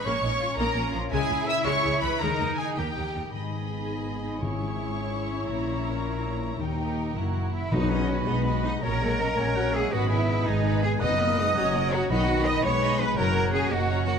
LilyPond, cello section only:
\new Staff \with { instrumentName = "Cello section" } { \time 6/8 \key gis \minor \tempo 4. = 111 cis'8 dis'8 eis'8 dis'8 cis'8 eis'8 | e'2. | dis'4. g'8. r8. | gis,2.~ |
gis,2. | ais,2. | dis,4. fis,4 e'8 | \key b \major dis'8 cis'4 b4 dis'8 |
ais'2~ ais'8 gis'8 | fis'8 e'4 dis'4 gis'8 | dis''2~ dis''8 fis'8 | fis'4 dis''8 cis''4 b'8 |
ais'4 gis'8 fis'4 fis'8 | }